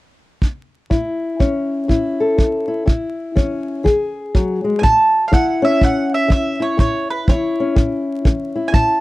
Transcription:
0.42 kick
0.90 steel-string acoustic guitar A2 E4, kick
1.39 steel-string acoustic guitar E3 C#4, kick
1.88 steel-string acoustic guitar A2 E4, kick
2.20 steel-string acoustic guitar A4
2.38 steel-string acoustic guitar E3, kick
2.68 steel-string acoustic guitar E4
2.86 steel-string acoustic guitar A2 E4, kick
3.36 steel-string acoustic guitar E3 C#4, kick
3.84 steel-string acoustic guitar E3 G#4, kick
4.35 steel-string acoustic guitar F#3, kick
4.64 steel-string acoustic guitar G#3
4.79 steel-string acoustic guitar A2, mandolin G#5
4.83 mandolin A5, kick
5.28 steel-string acoustic guitar E3, mandolin F5
5.33 steel-string acoustic guitar E4, mandolin F#5, kick
5.62 steel-string acoustic guitar C#4, mandolin E5
5.81 steel-string acoustic guitar A2, mandolin F#5, kick
6.14 mandolin E5
6.28 steel-string acoustic guitar E3, mandolin E5, kick
6.60 steel-string acoustic guitar E4, mandolin C#5
6.77 steel-string acoustic guitar A2, mandolin C#5, kick
7.10 mandolin B4
7.28 steel-string acoustic guitar E3 E4, mandolin C#5, kick
7.60 steel-string acoustic guitar C#4
7.76 steel-string acoustic guitar A2, kick
8.25 steel-string acoustic guitar E3, kick
8.56 steel-string acoustic guitar E4
8.68 mandolin G#5
8.72 steel-string acoustic guitar A2, mandolin A5, kick

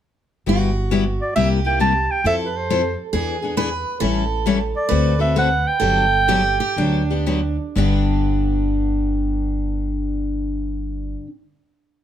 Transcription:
0.46 upright bass G1, steel-string acoustic guitar G3 B3 E4 F#4 G4
0.91 steel-string acoustic guitar G3 B3 E4 G4
1.22 clarinet D5
1.36 upright bass C2, steel-string acoustic guitar C3 G3 A#3 E4 G4, clarinet E5
1.65 steel-string acoustic guitar A#3 E4 G4, clarinet G5
1.80 steel-string acoustic guitar C3 G3 A#3 E4 G4, clarinet A5
2.11 clarinet G5
2.24 upright bass F2, steel-string acoustic guitar F3 C4 E4 A4, clarinet E5
2.46 clarinet B4
2.57 clarinet C5
2.70 steel-string acoustic guitar F3 C4 E4 A4
3.13 upright bass E2, steel-string acoustic guitar E3 B3 D4 G#4
3.42 steel-string acoustic guitar B3 D4 G#4
3.57 steel-string acoustic guitar E3 B3 D4 G#4 B4
4.01 upright bass A1, steel-string acoustic guitar E3 G3 C#4 E4 A4
4.46 steel-string acoustic guitar E3 G3 C#4 E4 A4
4.76 clarinet D5
4.89 upright bass D2, steel-string acoustic guitar D3 A3 C4 F#4 A4 B4
5.19 steel-string acoustic guitar C4 F#4 A4, clarinet E5
5.36 steel-string acoustic guitar D3 A3 C4 F#4 A4, clarinet F#5
5.67 clarinet G5
5.80 upright bass G1, steel-string acoustic guitar D3 F#3 B3 D4 G4 A4
6.28 steel-string acoustic guitar D3 F#3 B3 D4 G4
6.60 steel-string acoustic guitar G4
6.77 upright bass D2, steel-string acoustic guitar D3 F#3 B3 D4 G4
7.10 steel-string acoustic guitar B3 D4 G4
7.26 steel-string acoustic guitar D3 F#3 B3 D4 G4
7.75 upright bass G1, steel-string acoustic guitar G2 D3 B3 D4 G4

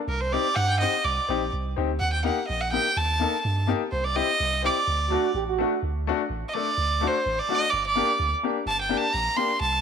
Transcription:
0.08 sub bass C2, violin A#4
0.20 violin C5
0.32 upright piano C4 D#4 G4, violin D5
0.54 sub bass G2, violin F#5 G5
0.67 violin G5
0.80 upright piano C4 D#4 G4, violin D#5
1.04 sub bass C2, violin D5
1.28 sub bass A#1, upright piano C4 D#4 G4
1.53 sub bass C2
1.76 sub bass D2, upright piano C4 D#4 G4
1.99 sub bass D#2, violin F#5
2.13 violin G5
2.24 upright piano A#3 D#4 G4, violin F#5
2.48 sub bass A#1, violin D#5
2.61 violin F#5
2.72 upright piano A#3 D#4 G4, violin G5
2.97 sub bass D#2, violin A5
3.20 upright piano A#3 D#4 A4
3.45 sub bass G2
3.67 upright piano A#3 D#4 G4
3.91 sub bass C2, violin C5
4.04 violin D5
4.15 upright piano C4 E4 G4, violin D#5
4.40 sub bass C2
4.62 upright piano C4 E4 G4, violin D5
4.87 sub bass D2
5.10 upright piano A3 D4 F#4, trombone F#4
5.34 sub bass A1, trombone G4
5.47 trombone F#4
5.58 upright piano A3 D4 F#4
5.83 sub bass D2
6.07 upright piano A3 D4 F#4
6.30 sub bass A1
6.49 violin D#5
6.54 upright piano A3 D4 A4, violin D5
6.78 sub bass D2
7.01 upright piano A3 D4 F#4
7.07 violin C5
7.26 sub bass A1
7.39 violin D5
7.49 upright piano A3 D4 F#4
7.55 violin D#5
7.70 sub bass G1, violin D5
7.87 violin D5
7.95 upright piano A#3 D4 G4
8.19 sub bass D2
8.43 upright piano A#3 D4 G4
8.66 sub bass G1, violin A5
8.81 violin G5
8.89 upright piano A#3 D4 G4
8.97 violin A5
9.13 sub bass A#1, violin A#5
9.36 upright piano A#3 D4 G4, violin C6
9.60 sub bass C2, violin A5

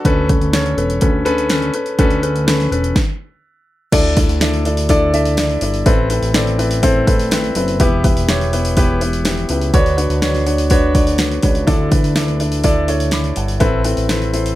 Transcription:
Already playing: grand piano D5
0.05 analog synth bass D2, grand piano D3 C#4 A4 B4, kick, closed hi-hat
0.29 grand piano C#4 A4 B4, kick, closed hi-hat
0.41 analog synth bass D2, closed hi-hat
0.53 grand piano C#4 A4 C#5, snare, closed hi-hat
0.66 closed hi-hat
0.77 analog synth bass E1, grand piano C#4 A4 B4, closed hi-hat
0.90 closed hi-hat
1.01 analog synth bass D2, grand piano C#4 A4 B4, kick, closed hi-hat
1.25 grand piano C#4 A4 B4, closed hi-hat
1.38 closed hi-hat
1.50 grand piano C#4 A4 B4, snare, closed hi-hat
1.62 closed hi-hat
1.74 grand piano C#4 A4 B4, closed hi-hat
1.86 closed hi-hat
1.98 analog synth bass D2, grand piano D3 C#4 A4 B4, kick, closed hi-hat
2.10 closed hi-hat
2.22 grand piano C#4 A4 B4, closed hi-hat
2.36 closed hi-hat
2.47 grand piano C#4 A4 B4, snare, closed hi-hat
2.60 snare, closed hi-hat
2.71 analog synth bass E1, grand piano C#4 A4 B4, closed hi-hat
2.84 closed hi-hat
2.96 kick, snare
3.92 analog synth bass D2, grand piano D3 D4 E4 A4 D5, kick, open hi-hat, crash
4.17 grand piano D4 E4 A4 D5, kick, open hi-hat
4.28 analog synth bass D2, open hi-hat
4.41 grand piano D4 E4 A4 D5, snare, open hi-hat
4.54 open hi-hat
4.65 grand piano D4 E4 A4 D5, open hi-hat
4.77 open hi-hat
4.89 grand piano D4 E4 A4 D5, kick, open hi-hat
5.14 grand piano D4 E4 A4 E5, open hi-hat
5.25 open hi-hat
5.37 grand piano D4 E4 D5, snare, open hi-hat
5.49 open hi-hat
5.61 analog synth bass G1, grand piano D4 E4 A4 D5, open hi-hat
5.74 open hi-hat
5.86 analog synth bass A1, grand piano A2 C4 E4 A4 B4, kick, open hi-hat
6.10 grand piano C4 E4 A4 B4, open hi-hat
6.22 analog synth bass A1, open hi-hat
6.34 grand piano C4 E4 A4 D5, snare, open hi-hat
6.47 open hi-hat
6.59 grand piano C4 E4 A4 B4, open hi-hat
6.71 open hi-hat
6.83 grand piano C4 E4 A4 C5, kick, open hi-hat
7.07 grand piano C4 E4 A4 B4, kick, open hi-hat
7.19 open hi-hat
7.31 grand piano C4 E4 A4 B4, snare, open hi-hat
7.44 open hi-hat
7.55 analog synth bass F#1, grand piano C4 E4 A4 B4, open hi-hat
7.68 open hi-hat
7.80 analog synth bass E1, grand piano E3 B3 E4 G4 B4, kick, open hi-hat
8.04 grand piano B3 E4 G4 B4, kick, open hi-hat
8.16 analog synth bass E1, open hi-hat
8.29 grand piano B3 E4 G4 C#5, snare, open hi-hat
8.41 open hi-hat
8.53 grand piano B3 E4 G4 B4, open hi-hat
8.65 open hi-hat
8.77 grand piano B3 E4 G4 B4, kick, open hi-hat
9.01 grand piano B3 E4 G4 B4, open hi-hat
9.13 open hi-hat
9.25 grand piano B3 E4 G4 B4, snare, open hi-hat
9.38 open hi-hat
9.49 analog synth bass C#2, grand piano B3 E4 G4 B4, open hi-hat
9.61 open hi-hat
9.74 analog synth bass D2, grand piano D3 D4 F#4 B4 C#5, kick, open hi-hat
9.86 open hi-hat
9.97 grand piano D4 F#4 B4 C#5, open hi-hat
10.10 analog synth bass D2, open hi-hat
10.22 grand piano D4 F#4 B4 C#5, snare, open hi-hat
10.34 snare, open hi-hat
10.46 grand piano D4 F#4 B4 C#5, open hi-hat
10.58 open hi-hat
10.70 grand piano D4 F#4 B4 C#5, kick, open hi-hat
10.94 grand piano D4 F#4 B4 D5, kick, open hi-hat
11.07 open hi-hat
11.18 grand piano D4 F#4 B4 C#5, snare, open hi-hat
11.31 open hi-hat
11.43 analog synth bass C#2, grand piano D4 F#4 B4 C#5, kick, open hi-hat
11.55 open hi-hat
11.67 analog synth bass D2, grand piano D3 D4 E4 A4 D5, kick, open hi-hat
11.91 grand piano D4 E4 A4 B4, kick, open hi-hat
12.03 analog synth bass D2, open hi-hat
12.15 grand piano D4 E4 A4 D5, snare, open hi-hat
12.28 open hi-hat
12.40 grand piano D4 E4 A4 D5, open hi-hat
12.52 open hi-hat
12.64 grand piano D4 E4 A4 D5, kick, open hi-hat
12.88 grand piano D4 E4 A4 C#5, open hi-hat
13.00 open hi-hat
13.11 grand piano B5 D6, snare, open hi-hat
13.24 open hi-hat
13.36 analog synth bass G1, grand piano F#5 A5, open hi-hat
13.48 open hi-hat
13.60 analog synth bass A1, grand piano A2 C4 E4 A4 B4, kick, open hi-hat
13.84 grand piano C4 E4 A4 B4, open hi-hat
13.97 analog synth bass A1, open hi-hat
14.09 grand piano C4 E4 A4 B4, snare, open hi-hat
14.22 open hi-hat
14.33 grand piano C4 E4 A4 C5, open hi-hat
14.46 open hi-hat

